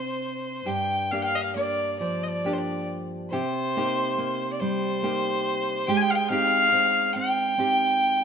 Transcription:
Already playing: nylon-string guitar C3 C4 D4, fiddle C5
0.65 nylon-string guitar G2 G4, fiddle G5
1.11 nylon-string guitar A#3 D4 G4, fiddle F5
1.22 fiddle F5 G5
1.35 fiddle D#5
1.42 fiddle F5
1.56 nylon-string guitar A#3, fiddle D5
1.99 nylon-string guitar F3, fiddle D5
2.23 fiddle D#5
2.28 fiddle D5
2.44 nylon-string guitar A#3 D4 G4
2.53 fiddle C5
2.58 fiddle D5
3.30 nylon-string guitar C3 G4, fiddle C5
3.76 nylon-string guitar A#3 D#4 G4
4.18 nylon-string guitar A#3
4.53 fiddle D5
4.59 nylon-string guitar G3, fiddle C5
5.03 nylon-string guitar A#3 D#4 G4
5.87 nylon-string guitar G#3 G4, fiddle G5
5.97 fiddle G#5
6.01 fiddle G5
6.10 fiddle F5
6.15 fiddle G5
6.29 nylon-string guitar C4 D#4 G4, fiddle F5
6.72 nylon-string guitar C4
7.14 nylon-string guitar C4, fiddle G5
7.58 nylon-string guitar C4 D#4 G4

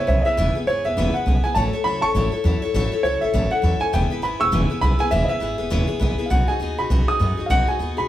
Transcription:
0.07 upright bass B1, steel-string acoustic guitar B3 E4 G#4 B4, upright piano C#5 E5
0.22 steel-string acoustic guitar G#4, upright piano D#5
0.26 steel-string acoustic guitar B3 E4 B4, upright piano E5
0.37 upright bass E1, steel-string acoustic guitar C#3 E3 B3 E4 G#4 B4
0.55 steel-string acoustic guitar B3 E4 G#4 B4, muted upright bass stroke
0.67 upright bass G#1, steel-string acoustic guitar B3 E4 G#4 B4, upright piano C#5
0.84 upright bass E1, steel-string acoustic guitar B3 E4 G#4 B4, upright piano E5
0.97 upright bass E1, steel-string acoustic guitar C#3 E3 B3 E4 G#4 B4
1.14 steel-string acoustic guitar B3 E4 G#4 B4, upright piano F#5, muted upright bass stroke
1.26 upright bass B1, steel-string acoustic guitar B3 E4 G#4 B4
1.43 steel-string acoustic guitar B3 E4 G#4 B4, upright piano G#5, muted upright bass stroke
1.55 upright bass A1, steel-string acoustic guitar F#3 A3 E4 A4 C#5, upright piano A5
1.73 steel-string acoustic guitar E4 A4 C#5
1.84 upright bass C#2, steel-string acoustic guitar F#3 E4 A4 C#5, upright piano B5
2.01 upright bass A1, steel-string acoustic guitar E4 A4 C#5, upright piano A5 C#6
2.15 upright bass A1, steel-string acoustic guitar F#3 A3 E4 A4 C#5
2.32 steel-string acoustic guitar E4 A4 C#5
2.44 upright bass E2, steel-string acoustic guitar F#3 E4 A4 C#5
2.62 steel-string acoustic guitar E4 A4 C#5, muted upright bass stroke
2.74 upright bass A1, steel-string acoustic guitar F#3 A3 E4 A4 C#5
2.92 steel-string acoustic guitar E4 A4 C#5
3.03 upright bass C#2, steel-string acoustic guitar F#3 E4 A4 C#5, upright piano C#5
3.21 upright bass A1, steel-string acoustic guitar E4 A4 C#5, upright piano E5
3.33 upright bass A1, steel-string acoustic guitar F#3 A3 E4 A4 C#5
3.51 steel-string acoustic guitar E4 A4 C#5, upright piano F#5
3.62 upright bass E2, steel-string acoustic guitar F#3 E4 A4 C#5
3.80 steel-string acoustic guitar E4 A4 C#5, upright piano G#5, muted upright bass stroke
3.93 upright bass E1, steel-string acoustic guitar C#3 E3 B3 E4 G#4 B4, upright piano G5
4.10 steel-string acoustic guitar B3 E4 G#4 B4, muted upright bass stroke
4.22 upright bass G#1, steel-string acoustic guitar B3 E4 G#4 B4, upright piano B5
4.40 upright bass E1, steel-string acoustic guitar B3 E4 G#4 B4, upright piano C#6 E6
4.52 upright bass E1, steel-string acoustic guitar C#3 E3 B3 E4 G#4 B4
4.70 steel-string acoustic guitar B3 E4 G#4 B4, muted upright bass stroke
4.81 upright bass B1, steel-string acoustic guitar B3 E4 G#4 B4, upright piano B5
4.99 steel-string acoustic guitar B3 E4 G#4 B4, upright piano G#5
5.11 upright bass E1, steel-string acoustic guitar C#3 E3 B3 E4 G#4 B4, upright piano E5
5.25 steel-string acoustic guitar G#4, upright piano D#5
5.29 steel-string acoustic guitar B3 E4 B4, upright piano E5, muted upright bass stroke
5.40 upright bass G#1, steel-string acoustic guitar B3 E4 G#4 B4
5.58 upright bass E1, steel-string acoustic guitar B3 E4 G#4 B4
5.70 upright bass E1, steel-string acoustic guitar C#3 E3 B3 E4 G#4 B4
5.87 steel-string acoustic guitar B3 E4 G#4 B4, muted upright bass stroke
6.00 upright bass A#1, steel-string acoustic guitar B3 E4 G#4 B4
6.18 steel-string acoustic guitar B3 E4 G#4 B4, muted upright bass stroke
6.26 upright piano F5
6.30 upright bass B1, steel-string acoustic guitar B3 D#4 F#4 G#4, upright piano F#5
6.47 steel-string acoustic guitar D#4 F#4 G#4, upright piano G#5, muted upright bass stroke
6.60 upright bass D#2, steel-string acoustic guitar B3 D#4 F#4 G#4
6.78 upright bass B1, steel-string acoustic guitar D#4 F#4 G#4, upright piano B5
6.90 upright bass B1, steel-string acoustic guitar B3 D#4 F#4 G#4
7.08 steel-string acoustic guitar D#4 F#4 G#4, upright piano D#6, muted upright bass stroke
7.20 upright bass F#2, steel-string acoustic guitar B3 D#4 F#4 G#4
7.37 steel-string acoustic guitar D#4 F#4 G#4, muted upright bass stroke
7.46 upright bass B1, steel-string acoustic guitar B3, upright piano F5
7.50 steel-string acoustic guitar D#4 F#4 G#4, upright piano F#5
7.67 steel-string acoustic guitar D#4 F#4 G#4, upright piano G#5, muted upright bass stroke
7.79 upright bass D#2, steel-string acoustic guitar B3 D#4 F#4 G#4
7.97 upright bass B1, steel-string acoustic guitar D#4 F#4 G#4, upright piano B5

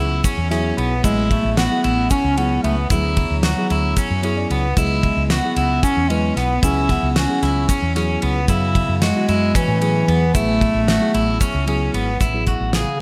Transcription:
Already playing: fretless electric bass C#2, tine electric piano F#3 B3 E4 G#4, clean electric guitar E4
0.24 clean electric guitar C#4, kick, ride, shaker
0.38 fretless electric bass E2
0.50 tine electric piano F#3 B3 E4 G#4 E5, clean electric guitar C#4, snare, ride
0.77 fretless electric bass B1, clean electric guitar B3, tine electric piano B5, ride
1.03 fretless electric bass A1, tine electric piano F#3 B3 E4 G#4, bass clarinet G#3, clean electric guitar E4, kick, ride, shaker
1.31 bass clarinet A3, kick, ride
1.45 fretless electric bass A1
1.57 bass clarinet B3, clean electric guitar F#4, snare, ride, shaker
1.70 tine electric piano F#3 B3 E4 G#4
1.84 fretless electric bass A1, clean electric guitar E4, ride, shaker
2.10 bass clarinet C#4, clean electric guitar C#4, kick, snare, ride, shaker
2.24 fretless electric bass C#2
2.37 tine electric piano F#3 B3 E4 G#4, bass clarinet B3, clean electric guitar C#4, ride
2.63 fretless electric bass C#2, bass clarinet A3, clean electric guitar B3, ride
2.90 fretless electric bass D2, tine electric piano F#3 B3 E4 G#4, bass clarinet F#3, clean electric guitar E4, kick, ride, shaker
3.17 kick, ride
3.30 fretless electric bass D2
3.43 clean electric guitar F#4, snare, ride
3.57 tine electric piano F#3 B3 E4 G#4
3.70 fretless electric bass D2, clean electric guitar E4, ride
3.96 clean electric guitar C#4, kick, ride, shaker
4.11 fretless electric bass F#2
4.23 tine electric piano F#3 B3 E4 G#4 C#5, clean electric guitar C#4, ride
4.37 tine electric piano D5
4.50 fretless electric bass C#2, clean electric guitar B3, tine electric piano F#5, ride
4.76 fretless electric bass C#2, tine electric piano F#3 B3 E4 G#4, bass clarinet G#3, clean electric guitar E4, kick, ride, shaker
5.03 kick, ride
5.17 fretless electric bass C#2
5.30 bass clarinet B3, clean electric guitar F#4, snare, ride, shaker
5.43 tine electric piano F#3 B3 E4 G#4
5.56 fretless electric bass C#2, clean electric guitar E4, ride, shaker
5.83 bass clarinet C#4, clean electric guitar C#4, kick, ride, shaker
5.97 fretless electric bass E2
6.09 tine electric piano F#3 B3 E4 B4, bass clarinet G#3, clean electric guitar C#4, ride
6.36 fretless electric bass B1, bass clarinet B3, clean electric guitar B3, snare, ride
6.62 fretless electric bass C#2, tine electric piano F#3 B3 E4 G#4, bass clarinet C#4, clean electric guitar E4, kick, ride, shaker
6.89 bass clarinet B3, kick, snare, ride
7.03 fretless electric bass C#2
7.16 bass clarinet C#4, clean electric guitar F#4, snare, ride, shaker
7.28 tine electric piano F#3 B3 E4 G#4
7.42 fretless electric bass C#2, clean electric guitar E4, snare, ride, shaker
7.69 clean electric guitar C#4, kick, ride, shaker
7.82 fretless electric bass E2
7.95 tine electric piano F#3 B3 E4 G#4, clean electric guitar C#4, snare, ride
8.22 fretless electric bass C#2, clean electric guitar B3, ride
8.48 fretless electric bass F#2, bass clarinet C#3, tine electric piano F#3 B3 E4 G#4, clean electric guitar E4, kick, ride, shaker
8.75 kick, ride
8.89 fretless electric bass F#2
9.02 bass clarinet G#3, clean electric guitar F#4, snare, ride, shaker
9.15 tine electric piano F#3 B3 E4 F#4
9.28 fretless electric bass F#2, clean electric guitar E4, ride, shaker
9.55 bass clarinet E3, clean electric guitar C#4, kick, ride, shaker
9.68 fretless electric bass A2
9.81 tine electric piano F#3 B3 E4 G#4, clean electric guitar C#4, ride
10.08 fretless electric bass E2, clean electric guitar B3, ride
10.34 fretless electric bass A1, tine electric piano F#3 B3 E4 G#4, bass clarinet A3, clean electric guitar E4, kick, ride, shaker
10.61 kick, ride
10.75 fretless electric bass A1
10.88 clean electric guitar F#4, snare, ride
11.00 tine electric piano F#3 B3 E4 G#4
11.14 fretless electric bass A1, clean electric guitar E4, ride
11.41 clean electric guitar C#4, kick, ride, shaker
11.55 fretless electric bass C#2
11.67 tine electric piano F#3 B3 E4 G#4, clean electric guitar C#4, ride
11.94 fretless electric bass G#1, clean electric guitar B3, ride
12.20 fretless electric bass A1, clean electric guitar E4, kick, closed hi-hat, shaker
12.33 tine electric piano F#3 B3 E4 G#4
12.47 clean electric guitar F#4, kick, closed hi-hat
12.60 fretless electric bass A1
12.73 bass clarinet C#3, clean electric guitar G#4, snare, closed hi-hat

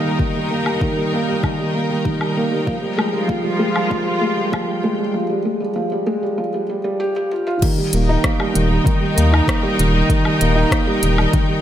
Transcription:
Already playing: felt piano D#3 G3 A#3, string section D#3 D#4 A#4 G5
0.04 felt piano G3
0.19 felt piano D#3, kick
0.35 felt piano G3
0.51 felt piano A#3
0.66 felt piano G3, low woodblock
0.81 felt piano D#3, kick
0.97 felt piano G3
1.13 felt piano A#3
1.29 felt piano G3
1.43 felt piano D#3, kick, low woodblock
1.59 felt piano G3
1.75 felt piano A#3
1.90 felt piano G3
2.05 felt piano D#3, kick
2.21 felt piano G3, low woodblock
2.37 felt piano A#3
2.52 felt piano G3
2.66 felt piano F3, string section F3, kick
2.82 felt piano G3
2.98 felt piano G#3, low woodblock
3.13 felt piano G3, string section F4
3.28 felt piano F3, kick
3.44 felt piano G3
3.59 felt piano G#3
3.75 felt piano G3, low woodblock
3.90 felt piano F3, kick
4.06 felt piano G3
4.21 felt piano G#3
4.37 felt piano G3
4.52 felt piano F3, kick, low woodblock
4.68 felt piano G3
4.84 felt piano G#3
4.99 felt piano G3
5.14 felt piano F3
5.30 felt piano G3
5.45 felt piano G#3
5.60 felt piano G3
5.76 felt piano F3
5.92 felt piano G3
6.07 felt piano G#3
6.23 felt piano G3
6.38 felt piano F3
6.54 felt piano G3
6.69 felt piano G3
6.84 felt piano G3
7.00 felt piano G4
7.16 felt piano G4, high tom
7.32 felt piano F4, mid tom
7.47 felt piano F4, mid tom
7.62 felt piano D#3, string section D#3, kick, closed hi-hat, crash
7.78 felt piano G3
7.91 analog synth bass D#1, felt piano A#3, string section A#4, closed hi-hat
8.02 string section D#4
8.09 felt piano D#4, string section G5
8.24 felt piano A#3, kick, cross-stick, closed hi-hat
8.40 felt piano G3, low woodblock
8.54 analog synth bass D#1, felt piano D#3, closed hi-hat
8.69 felt piano G3
8.85 felt piano D#3, kick, closed hi-hat
9.01 felt piano G3
9.16 analog synth bass D#2, felt piano A#3, closed hi-hat
9.32 felt piano D#4, low woodblock
9.47 felt piano A#3, kick, cross-stick, closed hi-hat
9.63 felt piano G3
9.78 analog synth bass D#1, felt piano D#3, closed hi-hat
9.94 felt piano G3
10.09 felt piano D#3, kick, closed hi-hat
10.25 felt piano G3, low woodblock
10.40 analog synth bass D#1, felt piano A#3, closed hi-hat
10.55 felt piano D#4
10.71 felt piano A#3, kick, cross-stick, closed hi-hat
10.87 felt piano G3
11.03 analog synth bass D#1, felt piano D#3, closed hi-hat
11.18 felt piano G3, low woodblock
11.33 felt piano D#3, kick, closed hi-hat
11.49 felt piano G3

